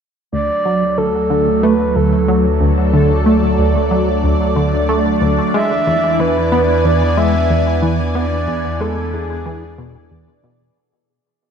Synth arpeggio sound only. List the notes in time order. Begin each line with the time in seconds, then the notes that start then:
0.33 D2
0.65 F#3
0.98 D2
1.30 D3
1.63 A3
1.96 D2
2.28 F#3
2.61 D2
2.94 D3
3.26 A3
3.58 D2
3.91 F#3
4.24 D2
4.56 D3
4.89 A3
5.21 D2
5.54 G#3
5.87 E2
6.19 E3
6.52 B3
6.85 E2
7.17 G#3
7.50 E2
7.82 E3
8.15 B3
8.48 E2
8.81 G#3
9.13 E2
9.46 E3
9.78 B2
10.11 E2
10.44 B2